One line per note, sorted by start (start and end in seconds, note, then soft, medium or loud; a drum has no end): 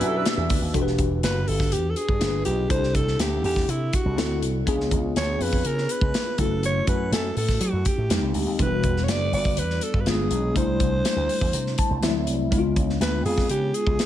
0.00 0.22 F#2 medium
0.00 0.48 B2 medium
0.00 0.48 G3 medium
0.00 0.72 D4 medium
0.00 0.49 E4 medium
0.00 0.72 F#4 medium
0.00 0.73 G4 medium
0.00 0.73 B4 medium
0.00 0.74 D5 medium
0.00 0.74 E5 medium
0.00 0.74 E6 medium
0.00 closed hi-hat medium
0.08 0.19 A4 medium
0.17 0.26 B4 medium
0.26 snare loud
0.26 closed hi-hat medium
0.37 0.50 E2 medium
0.50 0.61 D2 medium
0.50 kick medium
0.50 open hi-hat medium
0.62 0.72 D#2 medium
0.73 0.95 E1 medium
0.73 2.18 D4 medium
0.73 2.18 F#4 medium
0.73 2.19 G4 medium
0.73 0.81 A4 medium
0.73 kick medium
0.73 closed hi-hat medium
0.82 2.22 B4 medium
0.87 snare soft
0.98 1.23 E1 medium
0.98 kick medium
0.98 closed hi-hat soft
1.23 1.44 F#1 medium
1.23 1.50 B4 medium
1.23 snare loud
1.23 closed hi-hat medium
1.48 1.74 G1 medium
1.48 1.74 A4 medium
1.48 open hi-hat medium
1.60 kick medium
1.60 snare soft
1.72 1.93 E2 medium
1.72 1.91 G4 medium
1.72 closed hi-hat medium
1.90 1.98 A4 medium
1.96 2.45 G#4 medium
1.96 closed hi-hat medium
2.08 2.19 G2 medium
2.08 kick medium
2.20 2.42 G1 medium
2.20 2.67 D4 medium
2.20 2.70 F4 medium
2.20 2.70 G#4 medium
2.20 2.27 A#4 medium
2.20 snare loud
2.20 closed hi-hat medium
2.27 2.73 B4 medium
2.45 2.67 B1 loud
2.45 2.68 G4 medium
2.45 closed hi-hat medium
2.69 2.91 C2 medium
2.69 4.14 D4 medium
2.69 4.14 E4 medium
2.69 4.14 G4 medium
2.69 4.15 A4 medium
2.69 2.96 C5 medium
2.69 kick loud
2.69 closed hi-hat medium
2.83 snare soft
2.95 3.16 C2 medium
2.95 3.22 A4 loud
2.95 kick medium
2.95 closed hi-hat medium
3.08 snare soft
3.19 3.40 D2 medium
3.19 3.44 G4 medium
3.19 snare loud
3.19 closed hi-hat medium
3.44 3.65 E2 medium
3.44 3.72 G4 medium
3.44 open hi-hat medium
3.56 kick medium
3.56 snare soft
3.68 3.89 C3 medium
3.68 3.96 E4 medium
3.68 closed hi-hat medium
3.93 4.43 F#4 medium
3.93 kick medium
3.93 closed hi-hat medium
4.05 4.17 C2 medium
4.17 4.43 D2 medium
4.17 4.66 C4 medium
4.17 4.67 E4 medium
4.17 4.67 F#4 medium
4.17 4.67 A4 medium
4.17 snare loud
4.17 closed hi-hat medium
4.42 4.63 C2 medium
4.42 closed hi-hat medium
4.66 4.88 C#2 loud
4.66 6.35 B3 medium
4.66 6.35 D4 medium
4.66 6.36 F4 medium
4.66 6.36 G#4 medium
4.66 kick medium
4.66 closed hi-hat medium
4.80 snare soft
4.91 5.12 C#2 medium
4.91 kick medium
4.91 closed hi-hat medium
5.16 5.37 D2 medium
5.16 5.43 C#5 loud
5.16 snare loud
5.16 closed hi-hat medium
5.40 5.61 F2 medium
5.40 5.68 B4 medium
5.40 open hi-hat medium
5.53 kick medium
5.65 5.86 C#3 medium
5.65 5.92 A#4 medium
5.65 closed hi-hat medium
5.78 snare soft
5.89 6.42 B4 medium
5.89 closed hi-hat medium
6.01 6.12 C#2 medium
6.01 kick medium
6.14 snare loud
6.14 closed hi-hat medium
6.38 6.80 F#1 medium
6.38 8.07 A3 medium
6.38 8.07 C#4 medium
6.38 8.07 E4 soft
6.38 8.08 F#4 medium
6.38 6.64 A4 medium
6.38 kick medium
6.38 closed hi-hat medium
6.63 6.87 C#5 medium
6.63 closed hi-hat medium
6.87 7.08 F#2 medium
6.87 7.11 B4 medium
6.87 kick medium
6.87 closed hi-hat medium
7.12 7.33 F#2 medium
7.12 7.35 A4 medium
7.12 snare loud
7.12 closed hi-hat medium
7.36 7.57 A2 medium
7.36 7.63 A4 medium
7.36 open hi-hat medium
7.49 kick medium
7.49 snare soft
7.61 7.71 F#3 medium
7.61 7.89 F#4 medium
7.61 closed hi-hat medium
7.73 7.83 F#2 medium
7.85 8.35 G4 medium
7.85 kick medium
7.85 closed hi-hat medium
7.98 8.08 A2 medium
8.10 8.21 F2 medium
8.10 8.59 G#3 medium
8.10 8.60 C4 medium
8.10 8.60 D#4 medium
8.10 8.60 G4 medium
8.10 snare loud
8.10 closed hi-hat medium
8.22 8.33 C#2 medium
8.34 8.47 D2 medium
8.34 open hi-hat medium
8.47 8.57 D#2 medium
8.58 8.80 E1 medium
8.58 10.03 G3 medium
8.58 10.04 B3 medium
8.58 10.04 D4 medium
8.58 8.66 E4 soft
8.58 9.05 B4 medium
8.58 kick medium
8.58 closed hi-hat medium
8.66 10.07 F#4 medium
8.83 9.08 E1 medium
8.83 kick medium
8.83 closed hi-hat medium
8.97 snare soft
9.04 9.12 C#5 medium
9.08 9.29 F#1 medium
9.08 9.34 D5 loud
9.08 snare loud
9.08 closed hi-hat medium
9.32 9.59 G1 medium
9.32 9.60 D5 loud
9.32 open hi-hat medium
9.45 kick medium
9.57 9.78 E2 medium
9.57 9.85 B4 loud
9.57 closed hi-hat medium
9.70 snare soft
9.81 10.02 A4 medium
9.81 closed hi-hat medium
9.94 10.04 G2 medium
9.94 kick medium
10.01 10.10 B4 medium
10.06 10.27 G1 medium
10.06 10.56 G#3 medium
10.06 10.56 B3 medium
10.06 10.55 D4 medium
10.06 10.56 F4 medium
10.06 10.57 G#4 medium
10.06 snare loud
10.06 closed hi-hat medium
10.30 10.52 B1 medium
10.30 closed hi-hat medium
10.54 10.76 C2 loud
10.54 11.99 G3 medium
10.54 12.00 A3 medium
10.54 12.00 D4 medium
10.54 12.01 E4 medium
10.54 12.00 C5 loud
10.54 kick medium
10.54 closed hi-hat medium
10.80 11.01 C2 medium
10.80 kick medium
10.80 closed hi-hat soft
11.05 snare loud
11.05 closed hi-hat medium
11.16 11.27 D2 medium
11.29 open hi-hat medium
11.41 11.52 E2 medium
11.41 kick medium
11.53 11.75 C3 loud
11.53 closed hi-hat medium
11.67 snare soft
11.78 12.01 A5 medium
11.78 kick medium
11.78 closed hi-hat medium
11.90 12.01 C2 medium
12.02 12.27 D2 medium
12.02 12.08 E3 medium
12.02 12.52 A3 medium
12.02 12.52 C4 medium
12.02 12.51 E4 medium
12.02 12.49 E5 medium
12.02 snare loud
12.02 closed hi-hat medium
12.08 12.54 F#3 medium
12.27 12.48 C2 medium
12.27 closed hi-hat medium
12.50 12.73 C#2 medium
12.50 14.06 G#3 medium
12.50 14.06 B3 medium
12.50 14.06 D4 medium
12.50 12.58 E4 medium
12.50 kick medium
12.50 closed hi-hat medium
12.58 14.06 F4 medium
12.76 12.97 C#2 medium
12.76 kick medium
12.76 closed hi-hat medium
12.90 snare soft
13.00 13.22 D2 medium
13.00 13.24 B4 loud
13.00 snare loud
13.00 closed hi-hat medium
13.25 13.46 F2 medium
13.25 13.49 G#4 loud
13.25 open hi-hat medium
13.38 kick medium
13.38 snare soft
13.49 13.71 C#3 medium
13.49 13.76 G4 loud
13.49 closed hi-hat medium
13.74 14.06 G#4 medium
13.74 closed hi-hat medium
13.86 13.97 C#2 medium
13.86 kick medium
13.99 snare loud
13.99 closed hi-hat medium